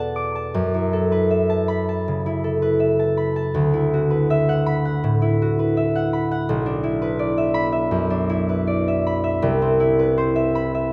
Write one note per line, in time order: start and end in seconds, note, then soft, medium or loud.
0.00 0.57 E2 medium
0.00 0.58 B2 medium
0.00 3.10 F#4 medium
0.00 0.92 A4 soft
0.00 0.57 D5 medium
0.00 0.62 E5 soft
0.00 3.67 F#5 medium
0.00 0.34 A5 medium
0.00 0.15 D6 medium
0.16 0.57 D6 medium
0.35 1.48 A5 medium
0.54 3.56 F#2 medium
0.74 2.25 E4 soft
0.93 2.43 A4 medium
1.12 2.61 B4 medium
1.30 2.79 E5 medium
1.50 1.87 A5 medium
1.68 3.16 B5 medium
1.89 2.98 A5 medium
2.08 3.58 C#3 medium
2.26 3.72 E4 medium
2.44 6.34 A4 medium
2.62 4.09 B4 medium
2.80 4.29 E5 medium
2.99 3.35 A5 medium
3.17 4.65 B5 medium
3.36 7.26 A5 medium
3.54 6.50 D2 medium
3.74 5.21 E4 medium
3.94 5.41 F#4 medium
4.10 5.58 B4 medium
4.30 5.76 E5 medium
4.49 4.84 F#5 medium
4.66 6.12 B5 medium
4.85 5.94 F#5 medium
5.04 6.50 A2 medium
5.22 6.82 E4 medium
5.42 9.32 F#4 medium
5.59 7.01 B4 medium
5.77 7.36 E5 medium
5.95 6.30 F#5 medium
6.13 7.53 B5 medium
6.31 9.47 F#5 medium
6.49 9.47 B1 medium
6.66 8.09 D4 medium
6.83 8.28 E4 medium
7.02 8.48 B4 medium
7.19 8.66 D5 medium
7.38 7.71 E5 medium
7.54 9.05 B5 medium
7.72 8.87 E5 medium
7.91 9.46 F#2 medium
8.10 9.46 D4 medium
8.29 9.79 E4 medium
8.49 9.98 B4 medium
8.67 9.45 D5 medium
8.88 9.22 E5 medium
9.07 10.54 B5 medium
9.24 10.34 E5 medium
9.42 10.93 C2 medium
9.62 10.93 C4 medium
9.80 10.93 E4 medium
9.99 10.93 B4 medium
10.18 10.93 C5 medium
10.36 10.73 E5 medium
10.55 10.93 B5 medium
10.75 10.93 E5 medium